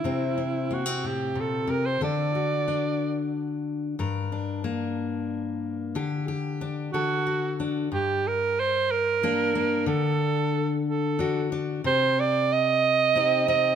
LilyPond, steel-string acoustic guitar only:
\new Staff \with { instrumentName = "Steel-string acoustic guitar" } { \time 6/8 \key d \phrygian \tempo 4. = 61 << { c'8 c'8 bes16 c'4.~ c'16 | a'8 fis'8 d'2 | bes'8 d'8 bes2 | g'8 g'8 d'8 a'8 fis'8 d'8 |
\key g \minor r2 <bes d'>8 bes8 | r2 <d' fis'>8 d'8 | r2 <c' ees' g'>8 c'8 | } \\ { c4. a,8 bes,8 c8 | d2. | g,2. | d4. d4. |
g,2. | d2. | c2. | } >> }